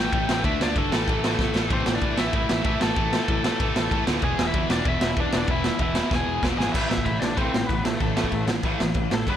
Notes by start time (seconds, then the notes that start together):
Already playing: A2 E3 A3 G5
0.00 E3
0.12 A1 A2 E3 A3, kick, ride
0.29 A1 A2 E3 A3, snare
0.44 D2 D3 A3 D4 E5, kick, ride
0.60 D2 D3 A3 D4 D5, snare
0.76 G1 D3 A3 D4 A4, kick, ride
0.91 A1 A2 E3 A3, snare
1.08 A1 A2 E3 A3, kick, ride
1.24 A2 E3 A3, snare
1.39 A1 A2 E3 A3, kick, snare
1.55 A1 A2 E3 A3, snare
1.70 A1 A2 E3 A3 C4 C5, kick, ride
1.86 A1, snare
1.95 D4 D5
2.01 A1 A2 E3 A3, kick, ride
2.18 A1 A2 E3 A3 E4 E5, snare
2.33 A1 A2 E3 A3, kick, ride
2.49 A1, snare
2.64 A1 A2 E3 A3 E4 E5, kick, ride
2.80 A1 A2 E3 A3 A4 A5, snare
2.96 A1 A2 E3 A3, kick, ride
3.13 snare
3.28 A1 A2 E3 A3, kick, ride
3.44 A2 E3 A3, snare
3.60 A1 A2 E3 A3, kick, ride
3.76 A1, snare
3.91 A1 A2 E3 A3, kick, ride
4.07 D2 A2 E3 A3, snare
4.22 E1 E2 B2 E3 G#4 G#5, kick, ride
4.39 E1, snare
4.47 E4 E5
4.54 E1 E2 B2 E3, kick, ride
4.69 E1 E2 B2 E3 D4 D5, snare
4.85 E1 E2 B2 E3 E4 E5, kick, ride
5.01 E1, snare
5.16 E1 E2 B2 E3 D4, kick, ride
5.21 D5
5.32 E1 E2 B2 E3, snare
5.47 E1 E2 B2 E3 E4 E5, kick, ride
5.64 snare
5.79 E1 E2 B2 E3 E4 E5, kick, ride
5.95 E2 B2 E3, snare
6.10 E1 E2 B2 E3 G#4, kick, snare
6.15 G#5
6.27 E1
6.42 E1 E2 B2 E3, kick, snare
6.57 G#1 E2 B2 E3 G#4 G#5, snare
6.72 A1 A2 E3 A3 E4 E5, kick, crash
6.89 A1 A2 E3 E4 E5, snare
6.98 kick
7.05 A1 A2 E3 E4 E5, kick, crash
7.20 A1 A2 E3 D4 D5, snare
7.37 A1 A2 E3 A3 C5, kick, crash
7.41 C4
7.53 A1 A2 E3, snare
7.67 A1 A2 E3 B4, kick, crash
7.71 B3
7.84 A1 A2 E3 A4, snare
7.89 A3
8.00 A1 A2 E3 A3, kick, crash
8.16 A1 A2 E3 A3, snare
8.24 kick
8.32 A1 A2 E3, kick, crash
8.47 A1 A2 E3, snare
8.63 A1 A2 E3 A3, kick, crash
8.80 A1 A2 E3, snare
8.94 A1 A2 E3, kick, crash
9.11 A1 A2 E3 A3 A4, snare
9.27 G1 G2 D3 G3 B3 B4, kick, crash